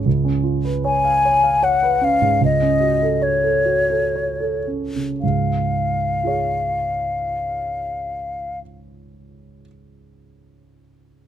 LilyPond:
<<
  \new Staff \with { instrumentName = "Flute" } { \time 3/4 \key fis \dorian \tempo 4 = 60 r4 gis''4 fis''8 eis''8 | dis''4 cis''4. r8 | eis''2.~ | eis''2. | }
  \new Staff \with { instrumentName = "Grand piano" } { \time 3/4 \key fis \dorian << { r2. | r2. | r4 <eis' gis' cis''>2~ | <eis' gis' cis''>2. | } \\ { cis,16 cis'16 eis'16 b'16 cis''16 eis''16 cis''16 eis''16 cis''16 b'16 cis'16 gis,16 | cis,16 cis'16 fis'16 a'16 cis''16 a'16 fis'16 a'16 cis''16 a'16 cis'16 cis16 | <cis, gis,>2.~ | <cis, gis,>2. | } >> }
>>